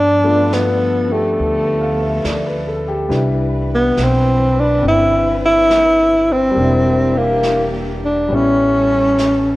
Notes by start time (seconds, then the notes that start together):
Already playing: G2 F3 B3 D4 A4
0.24 A3 B3 D4 F4
0.53 B3, snare, hi-hat pedal
1.08 A3 D4 G4
1.38 D2, brush sweep
1.81 F5
2.03 E5
2.24 D2 D5, snare, hi-hat pedal
2.46 B4
2.67 A4
2.88 G4
3.09 C2 E3 G3 D4 E4 B4, brush sweep, snare
3.75 B3
3.97 B1, snare, hi-hat pedal
4.04 C4
4.60 D4
4.82 G1 C4 D4, brush sweep
4.88 E4
5.46 E4
5.71 snare, hi-hat pedal
6.32 C4
6.51 G3 A#3
6.55 E1 E3 D4 G4, brush sweep
6.62 E4
7.18 A#3
7.43 snare, hi-hat pedal
8.05 D4
8.28 A1 G3 B3 C#4 A4, brush sweep
8.33 C#4 E4
9.18 snare, hi-hat pedal